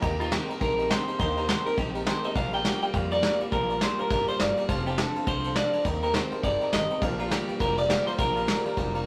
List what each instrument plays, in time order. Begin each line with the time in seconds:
0.01 upright bass D#2, steel-string acoustic guitar C3 D#3 A#3 D#4 G4 A#4, honky-tonk piano D#5 G5 A#5, kick, ride
0.19 steel-string acoustic guitar A#3 D#4 G4 A#4, clean electric guitar F4, honky-tonk piano D#5 G5 A#5, ride
0.31 steel-string acoustic guitar C3 D#3 A#3 D#4 G4 A#4, clean electric guitar C4 G4, honky-tonk piano G5 C6, snare, ride
0.48 steel-string acoustic guitar A#3 D#4 G4 A#4, honky-tonk piano D#5 G5 A#5, muted upright bass stroke, ride
0.60 upright bass A#1, clean electric guitar D#3 C4 A#4, steel-string acoustic guitar A#3 D#4 G4 A#4, honky-tonk piano D#5 G5 C6, kick, ride
0.78 steel-string acoustic guitar A#3 D#4 G4 A#4, honky-tonk piano D#5 G5 A#5, ride
0.90 steel-string acoustic guitar C3 D#3 A#3 D#4 G4 A#4, clean electric guitar C5, honky-tonk piano D#5 G5 A#5, snare, ride
1.07 steel-string acoustic guitar A#3 D#4 G4 A#4, honky-tonk piano D#5 G5 A#5, muted upright bass stroke, ride
1.19 upright bass D#2, steel-string acoustic guitar C3 D#3 A#3 D#4 G4 A#4, clean electric guitar C5, honky-tonk piano D#5 G5 A#5, kick, ride
1.36 steel-string acoustic guitar A#3 D#4 G4 A#4, honky-tonk piano D#5 G5 A#5, ride
1.48 steel-string acoustic guitar C3 D#3 A#3 D#4 G4 A#4, clean electric guitar C4 C5, honky-tonk piano D#5 G5 A#5, snare, ride
1.64 steel-string acoustic guitar A#3 D#4 G4 A#4, clean electric guitar A#4, honky-tonk piano D#5 G5 A#5, muted upright bass stroke, ride
1.76 upright bass A#1, clean electric guitar D#3 C4 G4, steel-string acoustic guitar A#3 D#4 G4 A#4, honky-tonk piano D#5 G5 A#5, kick, ride
1.93 steel-string acoustic guitar A#3 D#4 G4 A#4, honky-tonk piano D#5 G5 A#5, ride
2.06 steel-string acoustic guitar C3 D#3 A#3 D#4 G4 A#4, clean electric guitar C4 C5, honky-tonk piano D#5 G5 A#5, snare, ride
2.23 steel-string acoustic guitar A#3 D#4 G4 A#4, honky-tonk piano D#5 G5 A#5, clean electric guitar D#5, muted upright bass stroke, ride
2.35 upright bass A#1, steel-string acoustic guitar A#2 F3 G3 A#3 D4 G4, honky-tonk piano D5 F5 A#5, clean electric guitar F5, kick, ride
2.52 steel-string acoustic guitar G3 A#3 D4 G4, honky-tonk piano D5 F5 A#5, clean electric guitar G5, ride
2.64 steel-string acoustic guitar A#2 F3 G3 A#3 D4 G4, honky-tonk piano D5 F5 A#5, snare, ride
2.82 steel-string acoustic guitar G3 A#3 D4 G4, honky-tonk piano D5 F5 G5, clean electric guitar G5, muted upright bass stroke, ride
2.93 upright bass F2, clean electric guitar A#2 F5, steel-string acoustic guitar G3 A#3 D4 G4, honky-tonk piano D5 F5 C6, kick, ride
3.11 steel-string acoustic guitar G3 A#3 D4 G4, honky-tonk piano D5 F5 A#5, clean electric guitar D5, ride
3.22 steel-string acoustic guitar A#2 F3 G3 A#3 D4 G4, honky-tonk piano D5 F5 A#5, snare, ride
3.40 steel-string acoustic guitar G3 A#3 D4 G4, honky-tonk piano D5 F5 G5, muted upright bass stroke, ride
3.52 upright bass A#1, steel-string acoustic guitar A#2 F3 G3 A#3 D4 G4, clean electric guitar A#4, honky-tonk piano D5 F5 G5, kick, ride
3.69 steel-string acoustic guitar G3 A#3 D4 G4, honky-tonk piano D5 F5 A#5, ride
3.81 steel-string acoustic guitar A#2 F3 G3 A#3 D4 G4, clean electric guitar C5, honky-tonk piano D5 F5 A#5, snare, ride
3.98 steel-string acoustic guitar G3 A#3 D4 G4, clean electric guitar A#4, honky-tonk piano D5 F5 C6, muted upright bass stroke, ride
4.10 upright bass G#1, clean electric guitar A#2 A#4, steel-string acoustic guitar G3 A#3 D4 G4, honky-tonk piano D5 F5 A#5, kick, ride
4.27 steel-string acoustic guitar G3 A#3 D4 G4, clean electric guitar C5, honky-tonk piano D5 F5 C6, muted upright bass stroke, ride
4.39 upright bass G1, steel-string acoustic guitar A#2 F3 G3 A#3 D4 G4, honky-tonk piano D5 F5 A#5, clean electric guitar D5, snare, ride
4.57 steel-string acoustic guitar G3 A#3 D4 G4, honky-tonk piano D5 F5 A#5, muted upright bass stroke, ride
4.69 upright bass F1, clean electric guitar F2 C3, steel-string acoustic guitar F3 A3 C4 D4 A4, honky-tonk piano C5 F5 A5, kick, ride
4.86 steel-string acoustic guitar C4 D4 A4, clean electric guitar G4, honky-tonk piano C5 F5 A5, ride
4.98 clean electric guitar F2 D3 A4, steel-string acoustic guitar F3 A3 C4 D4 A4, honky-tonk piano C5 F5 A5, snare, ride
5.15 steel-string acoustic guitar C4 D4 A4, honky-tonk piano C5 F5 A5, muted upright bass stroke, ride
5.26 upright bass C2, clean electric guitar F2 D3 C5, steel-string acoustic guitar A3 C4 D4 A4, honky-tonk piano C5 F5 A5, kick, ride
5.44 steel-string acoustic guitar C4 D4 A4, honky-tonk piano C5 F5 A5, ride
5.56 clean electric guitar F2 D3 D5, steel-string acoustic guitar F3 A3 C4 D4 A4, honky-tonk piano C5 F5 A5, snare, ride
5.73 steel-string acoustic guitar C4 D4 A4, honky-tonk piano C5 F5 A5, muted upright bass stroke, ride
5.85 upright bass D#2, steel-string acoustic guitar D#3 G3 C4 G4 A#4, clean electric guitar A#3, honky-tonk piano D#5 G5 A#5, kick, ride
6.03 steel-string acoustic guitar C4 G4 A#4, clean electric guitar A#4, honky-tonk piano D#5 G5 A#5, ride
6.14 steel-string acoustic guitar D#3 G3 C4 G4 A#4, clean electric guitar C5, honky-tonk piano D#5 G5 A#5, snare, ride
6.31 steel-string acoustic guitar C4 G4 A#4, honky-tonk piano D#5 G5 C6, muted upright bass stroke, ride
6.43 upright bass G1, clean electric guitar D#3 D5, steel-string acoustic guitar G3 C4 G4 A#4, honky-tonk piano D#5 G5 A#5, kick, ride
6.61 steel-string acoustic guitar C4 G4 A#4, honky-tonk piano D#5 G5 A#5, ride
6.73 upright bass G#1, steel-string acoustic guitar D#3 G3 C4 G4 A#4, honky-tonk piano D#5 G5 A#5, clean electric guitar D#5, snare, ride
6.90 steel-string acoustic guitar C4 G4 A#4, honky-tonk piano D#5 G5 A#5, muted upright bass stroke, ride
7.01 upright bass A#1, steel-string acoustic guitar A#2 D3 F3 A#3 D4 G4, honky-tonk piano D5 F5 A#5, kick, ride
7.19 steel-string acoustic guitar F3 A#3 D4 G4, clean electric guitar F4, honky-tonk piano D5 F5 A#5, ride
7.31 steel-string acoustic guitar A#2 D3 F3 A#3 D4 G4, clean electric guitar G3 G4, honky-tonk piano D5 F5 A#5, snare, ride
7.48 steel-string acoustic guitar F3 A#3 D4 G4, honky-tonk piano D5 F5 G5, muted upright bass stroke, ride
7.59 upright bass F1, clean electric guitar A#2 G3 A#4, steel-string acoustic guitar F3 A#3 D4 G4, honky-tonk piano D5 F5 A#5, kick, ride
7.77 steel-string acoustic guitar F3 A#3 D4 G4, honky-tonk piano D5 F5 A#5, clean electric guitar D5, ride
7.89 steel-string acoustic guitar A#2 D3 F3 A#3 D4 G4, clean electric guitar G3, honky-tonk piano D5 F5 G5, snare, ride
8.06 steel-string acoustic guitar F3 A#3 D4 G4, clean electric guitar C5, honky-tonk piano D5 F5 A#5, muted upright bass stroke, ride
8.18 upright bass A#1, steel-string acoustic guitar A#2 D3 F3 A#3 D4 G4, clean electric guitar A#4, honky-tonk piano D5 F5 G5, kick, ride
8.35 steel-string acoustic guitar F3 A#3 D4 G4, honky-tonk piano D5 F5 A#5, ride
8.47 steel-string acoustic guitar A#2 D3 F3 A#3 D4 G4, clean electric guitar G3, honky-tonk piano D5 F5 G5, snare, ride
8.64 steel-string acoustic guitar F3 A#3 D4 G4, honky-tonk piano D5 F5 A#5, muted upright bass stroke, ride
8.76 upright bass F1, clean electric guitar A#2 G3, steel-string acoustic guitar F3 A#3 D4 G4, honky-tonk piano D5 F5 A#5, kick, ride
8.94 steel-string acoustic guitar F3 A#3 D4 G4, honky-tonk piano D5 F5 A#5, ride